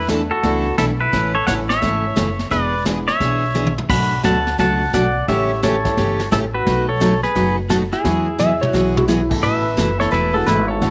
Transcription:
Already playing: upright bass E2
0.08 steel-string acoustic guitar E3 A3 D4 E4 A4, upright piano A3 B3 D4 E4 A4, kick, snare, hi-hat pedal
0.31 pedal steel guitar F#4 A4
0.43 upright bass C#2, steel-string acoustic guitar E3 A3 D4 E4 A4, upright piano A3 B3 D4 E4 A4, brush sweep, kick, snare
0.78 upright bass B1, steel-string acoustic guitar E3 A3 D4 E4 A4, pedal steel guitar E4 A4, kick, snare, hi-hat pedal
1.00 pedal steel guitar E4 B4
1.12 upright bass A1, steel-string acoustic guitar C#3 E3 A3 C#4 A4, brush sweep, kick, snare
1.35 pedal steel guitar A4 C#5
1.46 upright bass A1, steel-string acoustic guitar C#3 E3 A3 C#4 A4, upright piano E3 A3 C#4 E4 A4, pedal steel guitar C#5 F#5, kick, snare, hi-hat pedal
1.69 pedal steel guitar C#5 E5, snare
1.81 upright bass G#1, steel-string acoustic guitar C#3 E3 A3 C#4 A4, upright piano E3 A3 C#4 E4 A4, brush sweep, kick, snare
2.16 upright bass F#1, steel-string acoustic guitar C#3 E3 A3 C#4 A4, kick, snare, hi-hat pedal
2.39 snare
2.50 upright bass E1, steel-string acoustic guitar E3 B3 D4 G#4, pedal steel guitar B4 D5, brush sweep, kick, snare
2.85 steel-string acoustic guitar E3 B3 D4 G#4, upright piano G#3 B3 D4 E4 G#4, kick, snare, hi-hat pedal
3.08 pedal steel guitar C#5 E5, snare
3.20 upright bass B1, steel-string acoustic guitar E3 B3 D4 G#4, brush sweep, kick, snare
3.54 steel-string acoustic guitar E3 B3 D4 G#4, hi-hat pedal, high tom
3.67 high tom
3.78 mid tom
3.89 upright bass B1, steel-string acoustic guitar B2 F#3 A3 D4 F#4, pedal steel guitar F#5 B5, brush sweep, kick, snare, crash
4.23 upright bass D2, steel-string acoustic guitar B2 F#3 A3 D4 F#4, upright piano A3 B3 D4 F#4 A4, pedal steel guitar F#5 A5, kick, snare, hi-hat pedal
4.47 snare
4.58 upright bass C#2, steel-string acoustic guitar B2 F#3 A3 D4 F#4, pedal steel guitar F#5 A5, brush sweep, kick, snare
4.93 upright bass B1, steel-string acoustic guitar B2 F#3 A3 D4 F#4, pedal steel guitar D5 F#5, kick, snare, hi-hat pedal
5.28 upright bass A1, steel-string acoustic guitar C#3 E3 A3 C#4 G4, upright piano G3 A3 C#4 E4 G4, pedal steel guitar C#5 E5, brush sweep, kick, snare
5.63 steel-string acoustic guitar C#3 E3 A3 C#4 G4, pedal steel guitar A4 C#5, kick, snare, hi-hat pedal
5.84 upright piano G3 A3 C#4 E4 G4, kick, snare
5.97 upright bass G1, steel-string acoustic guitar C#3 E3 A3 C#4 G4, brush sweep, kick, snare
6.20 snare
6.32 upright bass A1, steel-string acoustic guitar C#3 E3 A3 C#4 G4, pedal steel guitar E4 A4, kick, snare, hi-hat pedal
6.54 pedal steel guitar F#4 B4
6.67 upright bass B1, steel-string acoustic guitar B2 F#3 A3 D#4 F#4, brush sweep, kick, snare
6.89 pedal steel guitar A4 C#5
7.00 steel-string acoustic guitar B2 F#3 A3 D#4 F#4, kick, snare, hi-hat pedal
7.23 pedal steel guitar G#4 B4, snare
7.35 upright bass F#1, steel-string acoustic guitar B2 F#3 A3 D#4 F#4, brush sweep, kick, snare
7.69 steel-string acoustic guitar B2 F#3 A3 D#4 F#4, pedal steel guitar F#4 A4, kick, snare, hi-hat pedal
7.92 pedal steel guitar E4 G#4, snare
8.04 upright bass E2, steel-string acoustic guitar E3 F#3 B3 F#4 G#4, upright piano F#3 G#3 B3 E4 F#4, brush sweep, kick, snare
8.39 steel-string acoustic guitar E3 F#3 B3 F#4 G#4, electric slide guitar E5, hi-hat pedal, mid tom
8.61 electric slide guitar C#5, mid tom
8.70 upright bass B1, steel-string acoustic guitar E3 F#3, pedal steel guitar F#4
8.74 steel-string acoustic guitar B3 F#4 G#4, snare
8.96 upright piano F#3 G#3 B3 E4 G#4, electric slide guitar F#4, mid tom
9.08 steel-string acoustic guitar E3 F#3 B3 F#4 G#4, electric slide guitar E4, snare, hi-hat pedal
9.30 upright piano E3 A3 B3 E4 A4, kick, crash
9.43 upright bass A1, steel-string acoustic guitar B2 E3 A3 E4 A4, pedal steel guitar B4 E5, brush sweep, kick, snare
9.77 upright bass F#1, steel-string acoustic guitar B2 E3 A3 E4 A4, kick, snare, hi-hat pedal
9.98 upright piano E3 A3 B3 E4 A4, pedal steel guitar A4 C#5, snare
10.11 upright bass E1, steel-string acoustic guitar B2 E3 A3 E4 A4, pedal steel guitar E4 B4, brush sweep, kick, snare
10.33 upright piano E3 A3 B3 E4 G#4, pedal steel guitar F#4 A4
10.46 upright bass G#1, steel-string acoustic guitar B2 E3 A3 E4 A4, pedal steel guitar E4 B4, kick, snare, hi-hat pedal
10.68 pedal steel guitar A4 C#5
10.80 upright bass A1, steel-string acoustic guitar C#3 E3 A3 C#4 F#4, upright piano F#3 A3 C#4 E4 F#4, brush sweep, kick, snare

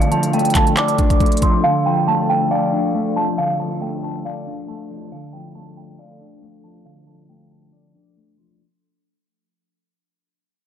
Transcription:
Already playing: clean electric guitar D3 F3 A3 D4 D5, ambient pad F3 A3 D4 A4
0.02 closed hi-hat
0.12 clean electric guitar F3, synth bell A5, closed hi-hat
0.23 closed hi-hat
0.33 clean electric guitar A3, synth bell G5, closed hi-hat
0.39 closed hi-hat
0.45 closed hi-hat
0.50 closed hi-hat
0.55 synth bell A5, kick, clap, closed hi-hat
0.67 closed hi-hat
0.77 clean electric guitar D5, synth bell D6, clap, closed hi-hat
0.88 closed hi-hat
0.98 clean electric guitar D4, kick, closed hi-hat
1.10 kick, closed hi-hat
1.20 clean electric guitar A3, kick, closed hi-hat
1.26 closed hi-hat
1.32 closed hi-hat
1.37 closed hi-hat
1.42 clean electric guitar F3, synth bell C6, kick, closed hi-hat
1.64 clean electric guitar D3, ambient pad A3, synth bell F5
1.86 clean electric guitar F3, synth bell G5
2.08 clean electric guitar A3, synth bell A5
2.29 synth bell G5
2.51 clean electric guitar D5, synth bell F5
2.72 clean electric guitar D4
2.94 clean electric guitar A3
3.16 clean electric guitar F3, synth bell A5
3.38 clean electric guitar D3, synth bell F5
3.60 clean electric guitar F3, synth bell A5
3.81 clean electric guitar A3, synth bell G5
4.03 synth bell A5
4.25 clean electric guitar D5, synth bell F5
4.47 clean electric guitar D4
4.68 clean electric guitar A3, synth bell A5
4.90 clean electric guitar F3
5.12 clean electric guitar D3, ambient pad F3 A4, synth bell F5
5.33 clean electric guitar F3, synth bell G5
5.55 clean electric guitar A3, synth bell A5
5.77 synth bell G5
5.99 clean electric guitar D5, synth bell F5
6.21 clean electric guitar D4
6.42 clean electric guitar A3
6.64 clean electric guitar F3, synth bell A5
6.85 clean electric guitar D3, synth bell F5
7.07 clean electric guitar F3, synth bell A5
7.29 clean electric guitar A3, synth bell G5
7.51 synth bell A5
7.73 clean electric guitar D5, synth bell D6
7.94 clean electric guitar D4
8.16 clean electric guitar A3
8.37 clean electric guitar F3, synth bell C6

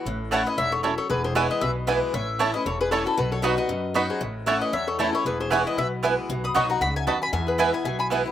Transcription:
0.05 upright bass A1, steel-string acoustic guitar A2
0.31 steel-string acoustic guitar E3 A3 C#4 E4, mandolin A3 E4 C#5 F#5 A5, five-string banjo A3 C#4 E4, resonator guitar played with a steel bar C#5
0.46 steel-string acoustic guitar C#4 E4, resonator guitar played with a steel bar B4, mandolin D#5
0.58 upright bass E1, steel-string acoustic guitar G#2, resonator guitar played with a steel bar C#5, mandolin E5
0.72 resonator guitar played with a steel bar A4, mandolin C#5
0.83 steel-string acoustic guitar F#2, mandolin A3 E4 A4 C#5 A5, five-string banjo A3 C#4 E4, resonator guitar played with a steel bar E4
0.98 resonator guitar played with a steel bar A4, mandolin C#5
1.09 upright bass E1, steel-string acoustic guitar E2, resonator guitar played with a steel bar G#4, mandolin B4
1.24 resonator guitar played with a steel bar G#4, mandolin C5
1.35 steel-string acoustic guitar E3 G#3 B3 E4, mandolin B3 E4 B4 C#5 G#5, five-string banjo B3 E4, resonator guitar played with a steel bar G#4
1.51 resonator guitar played with a steel bar B4, mandolin D#5
1.61 upright bass B1, steel-string acoustic guitar B2, resonator guitar played with a steel bar B4, mandolin E5
1.87 steel-string acoustic guitar E3 G#3 B3 E4, mandolin B3 E4 B4 G#5, five-string banjo B3 E4
2.13 upright bass A1, steel-string acoustic guitar A2, resonator guitar played with a steel bar C#5, mandolin E5
2.39 steel-string acoustic guitar E3 A3 C#4 E4, mandolin A3 E4 C#5 A5, five-string banjo A3 C#4 E4
2.54 steel-string acoustic guitar C#4 E4, resonator guitar played with a steel bar B4, mandolin D#5
2.66 upright bass E1, steel-string acoustic guitar E2, resonator guitar played with a steel bar A4, mandolin C#5
2.81 resonator guitar played with a steel bar G#4, mandolin B4
2.91 steel-string acoustic guitar E3 A3 C#4 E4, mandolin A3 E4 C#5 A5, five-string banjo A3 C#4 E4, resonator guitar played with a steel bar A4
3.05 steel-string acoustic guitar C#4 E4, resonator guitar played with a steel bar F#4, mandolin A4
3.17 upright bass B1, steel-string acoustic guitar B2, resonator guitar played with a steel bar F#4, mandolin B4
3.32 resonator guitar played with a steel bar A4, mandolin C#5
3.42 steel-string acoustic guitar F#3 B3 D#4 F#4, mandolin B3 F#4 D#5 B5, five-string banjo B3 D#4 F#4, resonator guitar played with a steel bar B4
3.57 steel-string acoustic guitar D#4 F#4, resonator guitar played with a steel bar B4, mandolin D#5
3.69 steel-string acoustic guitar F#2, upright bass F#2
3.94 steel-string acoustic guitar F#3 B3 D#4 F#4, mandolin B3 F#4 D#5 B5, five-string banjo B3 D#4 F#4
4.10 resonator guitar played with a steel bar G#4, mandolin C5
4.21 upright bass A1, steel-string acoustic guitar A2
4.46 steel-string acoustic guitar E3 A3 C#4 E4, mandolin A3 E4 C#5 F#5 A5, five-string banjo A3 C#4 E4, resonator guitar played with a steel bar C#5
4.61 resonator guitar played with a steel bar B4, mandolin D#5
4.73 upright bass E2, steel-string acoustic guitar E2, resonator guitar played with a steel bar C#5, mandolin E5
4.87 resonator guitar played with a steel bar A4, mandolin C#5
4.99 steel-string acoustic guitar E3 A3 C#4 E4, mandolin A3 E4 A4 C#5 A5, five-string banjo A3 C#4 E4, resonator guitar played with a steel bar E4
5.13 steel-string acoustic guitar C#4 E4, resonator guitar played with a steel bar A4, mandolin C#5
5.25 upright bass E1, steel-string acoustic guitar E2, resonator guitar played with a steel bar G#4, mandolin B4
5.40 resonator guitar played with a steel bar G#4, mandolin C5
5.50 steel-string acoustic guitar E3 G#3 B3 E4, mandolin B3 E4 B4 C#5 G#5, five-string banjo B3 E4, resonator guitar played with a steel bar G#4
5.67 resonator guitar played with a steel bar B4, mandolin D#5
5.77 upright bass B1, steel-string acoustic guitar B2, resonator guitar played with a steel bar B4, mandolin E5
6.03 steel-string acoustic guitar E3 G#3 B3 E4, mandolin B3 E4 B4 G#5, five-string banjo B3 E4
6.29 upright bass B1, steel-string acoustic guitar B2
6.44 resonator guitar played with a steel bar B5, mandolin D#6
6.54 upright bass B1, steel-string acoustic guitar F#3 B3 D#4 F#4, mandolin B3 F#4 D#5 B5 C#6, five-string banjo B3 D#4 F#4, resonator guitar played with a steel bar F#5
6.70 steel-string acoustic guitar D#4 F#4, resonator guitar played with a steel bar F#5, mandolin A#5
6.81 upright bass C#2, steel-string acoustic guitar G#2, resonator guitar played with a steel bar F#5, mandolin B5
6.96 resonator guitar played with a steel bar E5, mandolin G#5
7.07 upright bass D#2, steel-string acoustic guitar F#2, mandolin B3 F#4 D#5 A5 B5, five-string banjo B3 D#4 F#4, resonator guitar played with a steel bar F#5
7.22 resonator guitar played with a steel bar G#5, mandolin B5
7.32 upright bass E2, steel-string acoustic guitar E2, resonator guitar played with a steel bar E5, mandolin G#5
7.47 resonator guitar played with a steel bar G#4, mandolin B4
7.58 steel-string acoustic guitar E3 G#3 B3 E4, mandolin B3 E4 B4 E5 G#5, five-string banjo B3 E4, resonator guitar played with a steel bar B4
7.73 steel-string acoustic guitar B3 E4, resonator guitar played with a steel bar E5, mandolin G#5
7.84 upright bass B1, steel-string acoustic guitar B2, resonator guitar played with a steel bar E5, mandolin G#5
7.99 resonator guitar played with a steel bar G#5, mandolin B5
8.10 steel-string acoustic guitar E3 G#3 B3 E4, mandolin B3 E4 B4 G#5, five-string banjo B3 E4
8.26 steel-string acoustic guitar B3 E4

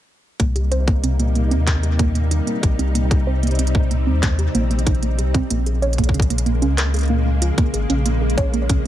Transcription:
0.40 sub bass C2, string machine C3 G3 A#3 D#4, synth pluck A#3, kick, closed hi-hat
0.56 synth pluck G4, closed hi-hat
0.71 synth pluck C5, closed hi-hat
0.87 synth pluck A#3, kick, closed hi-hat
1.03 synth pluck C4, closed hi-hat
1.19 synth pluck A#3, closed hi-hat
1.35 synth pluck A#3, closed hi-hat
1.51 sub bass D#2, synth pluck C4, closed hi-hat
1.67 synth pluck A#4, kick, clap, closed hi-hat
1.83 synth pluck G4, closed hi-hat
1.99 synth pluck A#3, kick, closed hi-hat
2.15 synth pluck A#3, closed hi-hat
2.31 synth pluck D#4, closed hi-hat
2.47 synth pluck A#3, closed hi-hat
2.63 sub bass A#1, synth pluck G4, kick, closed hi-hat
2.79 sub bass C2, synth pluck C4, closed hi-hat
2.95 synth pluck A#3, string machine C4, closed hi-hat
3.11 synth pluck G4, kick, closed hi-hat
3.27 synth pluck C5
3.43 synth pluck A#3, closed hi-hat
3.47 closed hi-hat
3.51 closed hi-hat
3.55 synth pluck C4, closed hi-hat
3.59 closed hi-hat
3.67 closed hi-hat
3.75 synth pluck A#3, kick
3.91 synth pluck A#3, closed hi-hat
4.07 sub bass D#2, synth pluck C4
4.23 synth pluck A#4, kick, clap, closed hi-hat
4.39 synth pluck G4, closed hi-hat
4.55 sub bass A#1, synth pluck A#3, closed hi-hat
4.71 synth pluck A#3, closed hi-hat
4.79 closed hi-hat
4.87 synth pluck D#4, kick, closed hi-hat
4.95 closed hi-hat
5.03 synth pluck A#3, closed hi-hat
5.18 sub bass C2, synth pluck G4, closed hi-hat
5.34 synth pluck C4, kick, closed hi-hat
5.50 sub bass A#1, string machine C#3 G#3 A#3, synth pluck A#3, closed hi-hat
5.66 synth pluck G#4, closed hi-hat
5.82 synth pluck C#5, closed hi-hat
5.93 closed hi-hat
5.98 synth pluck A#3, kick, closed hi-hat
6.04 closed hi-hat
6.09 kick
6.14 synth pluck C#4, closed hi-hat
6.20 kick, closed hi-hat
6.30 synth pluck A#3, closed hi-hat
6.38 closed hi-hat
6.46 synth pluck A#3, closed hi-hat
6.62 sub bass C#2, synth pluck C#4, closed hi-hat
6.78 synth pluck A#4, clap, closed hi-hat
6.94 synth pluck G#4, closed hi-hat
6.96 closed hi-hat
6.99 closed hi-hat
7.01 closed hi-hat
7.03 closed hi-hat
7.05 closed hi-hat
7.08 synth pluck A#3, closed hi-hat
7.26 synth pluck A#3
7.42 synth pluck F4, closed hi-hat
7.58 synth pluck A#3, kick, closed hi-hat
7.74 sub bass G#1, synth pluck G#4, closed hi-hat
7.90 sub bass A#1, synth pluck C#4, closed hi-hat
8.06 synth pluck A#3, closed hi-hat
8.22 synth pluck G#4
8.30 closed hi-hat
8.37 synth pluck C#5, kick, closed hi-hat
8.53 synth pluck A#3, closed hi-hat
8.69 synth pluck C#4, kick, closed hi-hat

